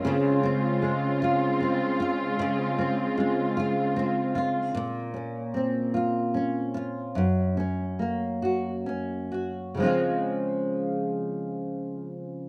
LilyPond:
<<
  \new Staff \with { instrumentName = "Nylon-string guitar" } { \time 6/8 \key des \major \tempo 4. = 50 des8 c'8 aes8 f'8 c'8 f'8 | des8 c'8 aes8 f'8 c'8 f'8 | bes,8 des'8 c'8 f'8 des'8 f'8 | ges,8 des'8 bes8 ges'8 des'8 ges'8 |
<des f aes c' f'>2. | }
  \new Staff \with { instrumentName = "String section" } { \time 6/8 \key des \major <des aes c' f'>2.~ | <des aes c' f'>2. | r2. | r2. |
r2. | }
>>